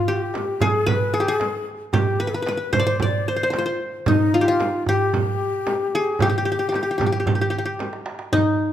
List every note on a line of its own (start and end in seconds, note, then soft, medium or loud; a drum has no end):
0.00 0.10 F4 medium
0.00 1.15 F4 medium
0.08 0.68 G4 medium
0.08 0.62 G4 medium
0.34 darbuka tek medium
0.34 frame drum medium
0.60 0.89 G#4 medium
0.60 1.13 G#4 loud
0.60 darbuka dum medium
0.60 frame drum medium
0.74 darbuka ka soft
0.86 1.96 B4 loud
0.86 1.15 B4 loud
0.86 darbuka dum medium
0.86 frame drum medium
1.00 darbuka ka soft
1.13 1.26 G#4 medium
1.13 darbuka ka soft
1.20 1.34 G4 medium
1.26 1.64 G#4 medium
1.26 1.99 G#4 medium
1.26 darbuka ka soft
1.40 darbuka tek medium
1.40 frame drum medium
1.93 3.19 G4 medium
1.93 2.21 G4 medium
1.93 darbuka dum loud
1.93 frame drum medium
2.20 2.27 B4 medium
2.20 2.31 B4 medium
2.27 2.36 G#4 medium
2.27 2.34 B4 medium
2.34 2.42 B4 medium
2.34 2.74 B4 medium
2.42 2.48 B4 medium
2.46 2.57 B4 medium
2.46 darbuka tek medium
2.46 frame drum medium
2.57 2.79 B4 medium
2.73 2.86 C5 medium
2.73 2.99 C5 medium
2.73 frame drum medium
2.73 darbuka dum loud
2.80 3.02 D5 medium
2.87 3.28 C5 medium
2.87 darbuka ka soft
3.00 3.29 D5 medium
3.00 4.01 D5 medium
3.00 frame drum medium
3.00 darbuka dum medium
3.14 darbuka ka soft
3.27 3.54 C5 medium
3.27 3.36 C5 medium
3.27 darbuka ka soft
3.36 3.43 C5 medium
3.36 darbuka ka soft
3.43 3.50 C5 medium
3.50 3.58 C5 medium
3.50 darbuka tek medium
3.50 frame drum medium
3.55 3.79 F4 medium
3.55 3.65 C5 medium
3.66 4.71 C5 medium
3.80 darbuka ka soft
4.06 5.52 D#4 medium
4.06 4.45 D#4 medium
4.06 frame drum loud
4.06 darbuka dum loud
4.34 4.48 F4 medium
4.41 4.88 G4 medium
4.48 4.84 F4 medium
4.48 5.83 F4 medium
4.60 darbuka tek medium
4.60 frame drum medium
4.86 6.16 G4 medium
4.86 6.01 G4 medium
4.86 darbuka dum medium
5.00 darbuka ka soft
5.13 darbuka dum medium
5.13 frame drum medium
5.27 darbuka ka soft
5.41 darbuka ka soft
5.67 darbuka tek medium
5.67 frame drum medium
5.94 6.28 G#4 loud
5.94 darbuka ka soft
6.19 7.75 G4 medium
6.19 6.29 G4 medium
6.19 darbuka dum medium
6.19 frame drum medium
6.30 6.37 G4 medium
6.38 6.45 G4 medium
6.45 6.51 G4 medium
6.52 6.59 G4 medium
6.59 6.68 G4 medium
6.69 6.75 G4 medium
6.69 darbuka tek medium
6.74 6.82 G4 soft
6.74 frame drum medium
6.83 6.90 G4 medium
6.91 6.97 G4 medium
6.98 7.06 G4 medium
6.98 darbuka dum medium
6.98 frame drum medium
7.06 7.12 G4 medium
7.12 7.19 G4 medium
7.12 darbuka ka soft
7.20 7.26 G4 medium
7.26 7.35 G4 medium
7.26 darbuka dum medium
7.26 frame drum medium
7.35 7.41 G4 soft
7.40 7.50 G4 medium
7.40 darbuka ka soft
7.50 7.58 G4 medium
7.50 darbuka ka soft
7.58 7.65 G4 medium
7.65 8.73 G4 medium
7.79 darbuka tek medium
7.79 frame drum medium
7.93 darbuka ka medium
8.06 darbuka tek medium
8.19 darbuka ka medium
8.33 8.73 D#4 loud
8.33 darbuka dum loud
8.33 frame drum medium